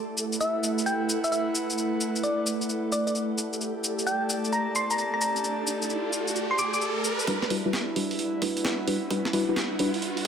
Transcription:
Already playing: A3 E4 G4 A4 D5 A5
0.04 B4 F#5
0.18 shaker
0.33 shaker
0.41 E5, shaker
0.64 shaker
0.79 shaker
0.86 G5, shaker
1.09 shaker
1.24 E5, shaker
1.32 E5, shaker
1.55 shaker
1.70 shaker
1.78 shaker
2.01 shaker
2.16 shaker
2.24 D5, shaker
2.47 shaker
2.62 shaker
2.69 shaker
2.92 D5, shaker
3.07 D5, shaker
3.15 shaker
3.38 G4, shaker
3.51 D5, shaker
3.60 A5, riser, shaker
3.84 shaker
3.99 shaker
4.07 G5, shaker
4.30 shaker
4.45 shaker
4.53 A#5, shaker
4.75 C6, shaker
4.90 A#5, shaker
4.98 A#5, shaker
5.14 A#5
5.21 A#5, shaker
5.36 shaker
5.44 shaker
5.67 shaker
5.82 shaker
5.90 shaker
6.13 shaker
6.28 shaker
6.36 shaker
6.51 C6
6.59 D6, shaker
6.74 D6, shaker
6.82 shaker
7.04 shaker
7.20 shaker
7.27 G3 D4 E4 F#4 B4, kick, closed hi-hat, riser
7.35 B4
7.42 snare
7.50 G3 D4 E4 F#4 B4, open hi-hat
7.65 G3 D4 E4 F#4 B4
7.73 snare, closed hi-hat
7.96 G3 D4 E4 F#4 B4 F#5, open hi-hat
8.11 open hi-hat
8.19 closed hi-hat
8.42 G3 D4 E4 F#4 B4, kick, open hi-hat
8.57 closed hi-hat
8.65 snare, closed hi-hat
8.88 G3 D4 E4 F#4 B4, open hi-hat
9.10 G3 D4 E4 F#4 B4, kick, closed hi-hat
9.25 snare
9.33 G3 D4 E4 F#4 B4, open hi-hat
9.48 G3 D4 E4 F#4 B4
9.56 snare, closed hi-hat
9.79 G3 D4 E4 F#4 B4, open hi-hat
9.94 open hi-hat
10.02 closed hi-hat
10.17 open hi-hat

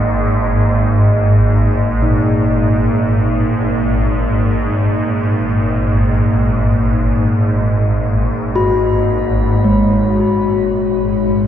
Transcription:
Already playing: G#1 G#2 A#3 G#4 D#5
2.02 A#2
8.55 F#4
9.64 G#1 G#2 G#3

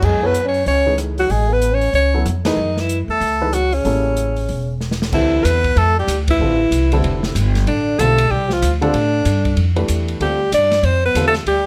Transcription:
Already playing: F#3 B3 E4 A4 C#5
0.02 F#2 G#3 G#4, kick, crash
0.23 F#3 B3 E4 A4 B4 C#5
0.34 closed hi-hat
0.45 C#4 C#5
0.54 open hi-hat
0.66 C#2 C#4 C#5, open hi-hat
0.87 E3 A3 D#4 G#4 B4
0.98 cross-stick, closed hi-hat
1.18 F#3 F#4, open hi-hat
1.29 A1 G#3 G#4, open hi-hat
1.51 B3 B4
1.62 closed hi-hat
1.72 C#4 C#5
1.81 open hi-hat
1.93 C#2 C#4 C#5, open hi-hat
2.14 F#3 B3 E4 A4 C#5
2.25 F2, cross-stick, closed hi-hat
2.45 D#3 E3 A3 D#4 G#4 B4, snare, ride
2.57 F#2
2.77 E3 E4, snare
2.89 closed hi-hat
3.08 E2 A3 A4
3.20 C#2, open hi-hat
3.41 E3 A3 D#4 G#4 B4
3.53 F#3 F#4, cross-stick, closed hi-hat
3.72 C#3 C#4, open hi-hat
3.85 A1 G3 A#3 C#4 E4 A4, open hi-hat
4.17 closed hi-hat
4.36 open hi-hat
4.49 E1, open hi-hat
4.81 snare
4.91 snare
5.02 snare
5.12 D2 D3 E3 G3 C4 E4 A4, kick, crash
5.44 E2 B3 B4, hi-hat pedal, ride
5.64 kick, ride
5.76 F2 A3 A4, ride
5.98 G3 G4
6.07 D2, hi-hat pedal, ride
6.28 E3 E4, kick, ride
6.40 A1 D3 G3 C4 F4 A4
6.71 C2, hi-hat pedal, ride
6.92 D3 G3 C4 E4 A4, ride
7.02 F1, ride
7.23 snare
7.35 G1, hi-hat pedal, ride
7.55 snare, ride
7.66 A1 D3 D4, ride
7.98 B1 D3 G3 A3 C4 F4 A4, hi-hat pedal, ride
8.18 ride
8.29 C2 G3 G4
8.50 F3 F4, snare
8.62 D2, hi-hat pedal, ride
8.81 D3 G3 C4 D4 F4 A4, ride
8.94 A2, ride
9.25 G2, hi-hat pedal, ride
9.45 kick, ride
9.56 F2, ride
9.76 E3 A3 D4 G4 B4, ride
9.88 E2, hi-hat pedal, ride
10.08 ride
10.20 D2 D3 G3 C4 F4 G4 A4, ride
10.52 G2 D4 D5, hi-hat pedal, ride
10.72 snare, ride
10.83 F2 C4 C5, ride
11.05 B3 B4
11.15 E2 D3 G3 C4 F4 A4, hi-hat pedal, ride
11.27 A3 A4
11.34 snare, ride
11.46 D2 G3 G4, ride

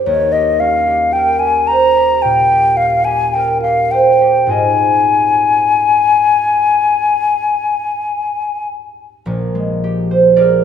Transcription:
Already playing: D#4 G4 A#4 C5
0.05 D#2 C#5
0.32 G4 D#5
0.60 C#4 F5
0.87 G4
1.13 A#4 G5
1.39 G4 G#5
1.68 C5 A#5
1.97 G4
2.22 A#2 G5
2.52 G4
2.77 C#4 F5
3.05 G4 G#5
3.34 A#4 G5
3.62 G4 F5
3.91 C5 G5
4.21 G4
4.46 G#2 C4 F4 G#4 D#5 G#5
9.26 A#1 A#2
9.55 G#3
9.84 G4
10.11 C5
10.36 G#4 A#4 D5

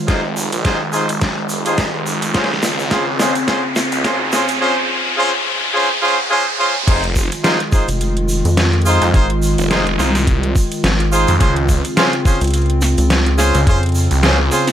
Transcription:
Already playing: D#3 G#3 F4, riser
0.08 F1 D#4 F4 G#4 C5, kick, snare, closed hi-hat, shaker
0.37 shaker
0.52 A#1, closed hi-hat, shaker
0.65 D#4 F4 G#4 C5, kick, snare, closed hi-hat, shaker
0.81 F1
0.93 D#4 F4 G#4 C5, shaker
1.09 closed hi-hat, shaker
1.21 kick, snare, closed hi-hat, shaker
1.37 F1
1.49 shaker
1.65 D#4 F4 G#4 C5, closed hi-hat, shaker
1.78 F1, kick, snare, closed hi-hat, shaker
1.94 F1
2.07 shaker
2.22 closed hi-hat, shaker
2.34 C#2 C#3 C4 C#4 F4 G#4 C5, kick, snare, closed hi-hat, shaker
2.44 snare
2.54 snare
2.63 snare, shaker
2.79 shaker
2.91 C#4 F4 G#4 C5, kick, snare, closed hi-hat, shaker
3.19 F2 C#4 F4 G#4 C5, snare, shaker
3.35 closed hi-hat, shaker
3.48 C#4 F4 G#4 C5, kick, snare, closed hi-hat, shaker
3.76 snare, shaker
3.92 C#2, closed hi-hat, shaker
4.04 G#1 C#4 F4 G#4 C5, kick, snare, closed hi-hat, shaker
4.32 C#4 F4 G#4 C5, snare, shaker
4.48 closed hi-hat, shaker
4.61 C#4 F4 G#4 C5
5.17 C#4 F4 G#4 C5
5.74 C#4 F4 G#4 C5
6.02 C#4 F4 G#4 C5
6.31 C#4 F4 G#4 C5
6.59 C#4 F4 G#4 C5
6.87 F1 D#3 G#3 D#4 F4 G#4 C5, kick, closed hi-hat, crash, shaker
7.04 closed hi-hat
7.16 kick, shaker
7.32 closed hi-hat, shaker
7.44 D#4 F4 G#4 C5, snare, closed hi-hat, shaker
7.60 closed hi-hat
7.72 D#4 F4 G#4 C5, kick, shaker
7.88 F1, closed hi-hat, shaker
8.01 closed hi-hat, shaker
8.17 closed hi-hat
8.29 shaker
8.45 F2, closed hi-hat, shaker
8.57 snare, closed hi-hat, shaker
8.73 closed hi-hat
8.82 closed hi-hat
8.86 D#4 F4 G#4 C5, shaker
8.91 closed hi-hat
9.02 F2, closed hi-hat, shaker
9.14 G#1 D#4 F4 G#4 C5, kick, closed hi-hat, shaker
9.30 closed hi-hat
9.42 shaker
9.58 F1, closed hi-hat, shaker
9.71 D#4 F4 G#4 C5, snare, closed hi-hat, shaker
9.87 closed hi-hat
9.99 C2 D#4 F4 G#4 C5, snare, shaker
10.15 snare, closed hi-hat, shaker
10.27 kick, closed hi-hat, shaker
10.43 closed hi-hat
10.56 kick, shaker
10.72 closed hi-hat, shaker
10.84 G#1, snare, closed hi-hat, shaker
11.00 closed hi-hat
11.12 D#4 F4 G#4 C5, shaker
11.28 F2, closed hi-hat, shaker
11.40 C#2 C#3 C4 C#4 F4 G#4 C5, kick, closed hi-hat, shaker
11.56 closed hi-hat
11.69 kick, shaker
11.85 closed hi-hat, shaker
11.97 C#4 F4 G#4 C5, snare, closed hi-hat, shaker
12.13 closed hi-hat
12.25 C#4 F4 G#4 C5, kick, shaker
12.41 C#2, closed hi-hat, shaker
12.44 closed hi-hat
12.47 closed hi-hat
12.51 closed hi-hat
12.54 closed hi-hat, shaker
12.58 closed hi-hat
12.66 closed hi-hat
12.70 closed hi-hat
12.81 snare, shaker
12.98 C#2, closed hi-hat, shaker
13.10 snare, closed hi-hat, shaker
13.26 closed hi-hat
13.38 C#4 F4 G#4 C5, snare, shaker
13.54 C#2, closed hi-hat, shaker
13.67 F2 C#4 F4 G#4 C5, kick, closed hi-hat, shaker
13.83 closed hi-hat
13.86 closed hi-hat
13.89 closed hi-hat
13.92 closed hi-hat, shaker
13.95 closed hi-hat
13.99 closed hi-hat
14.03 closed hi-hat
14.07 closed hi-hat
14.11 C#2, closed hi-hat, shaker
14.23 C#4 F4 G#4 C5, snare, closed hi-hat, shaker
14.52 C#4 F4 G#4 C5, snare, shaker
14.67 snare, closed hi-hat, shaker

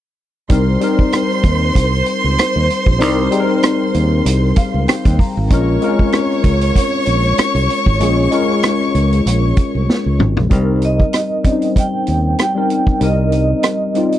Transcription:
0.49 C2 G3 C4 D#4 A#4 C5 C6, kick, closed hi-hat
0.80 G3 C4 D#4 A#4, closed hi-hat
0.99 kick
1.12 cross-stick, closed hi-hat
1.30 cross-stick
1.44 D#2, kick, closed hi-hat
1.75 C2, kick, closed hi-hat
2.06 closed hi-hat
2.24 C#2
2.38 cross-stick, closed hi-hat
2.56 D#2
2.70 closed hi-hat
2.86 A#1, kick
2.99 C2 G3 C4 D#4 A#4, closed hi-hat
3.30 G3 C4 D#4 G#4, closed hi-hat
3.40 A#4
3.63 cross-stick, closed hi-hat
3.94 D#2, closed hi-hat
4.25 C2, closed hi-hat
4.56 F5, kick, closed hi-hat
4.74 C#2
4.88 G5, cross-stick, closed hi-hat
5.05 D#2, kick, closed hi-hat
5.19 A#5, kick, open hi-hat
5.37 G#1
5.50 A#1 G#3 C#4 F4 A#4 C#5 C#6, kick, closed hi-hat
5.81 G#3 C4 F4 A#4, closed hi-hat
5.89 C#4
5.99 kick
6.12 cross-stick, closed hi-hat
6.31 cross-stick
6.44 C#2, kick, closed hi-hat
6.61 closed hi-hat
6.75 kick, closed hi-hat
7.06 A#1, closed hi-hat
7.38 muted fingered electric bass stroke, cross-stick, closed hi-hat
7.55 C2, closed hi-hat
7.70 closed hi-hat
7.86 G#1, kick
8.00 A#1 G#3 C#4 F4 G#4, closed hi-hat
8.31 G#3 C#4 F4 A#4, closed hi-hat
8.63 cross-stick, closed hi-hat
8.81 cross-stick
8.95 C#2, closed hi-hat
9.12 closed hi-hat
9.26 A#1, closed hi-hat
9.56 kick, closed hi-hat
9.75 C2
9.89 snare
10.06 C#2
10.19 G#1, mid tom
10.37 A#1, floor tom
10.49 C2 G3 C4 D#4 A#4, kick, closed hi-hat
10.82 D#5, closed hi-hat
11.00 kick
11.13 cross-stick, closed hi-hat
11.44 G3 C4 C#4 C5, kick, closed hi-hat
11.52 D#4
11.62 closed hi-hat
11.76 G5, kick, closed hi-hat
12.07 D#2, closed hi-hat
12.38 G5, cross-stick, closed hi-hat
12.55 G3 C4 D#4 A#4
12.70 closed hi-hat
12.87 kick
13.00 C2 G3 C4 D#4 A#4, closed hi-hat
13.04 D#5
13.32 D#5, closed hi-hat
13.63 cross-stick, closed hi-hat
13.94 G3 C4 D#4 F4, closed hi-hat
14.12 closed hi-hat

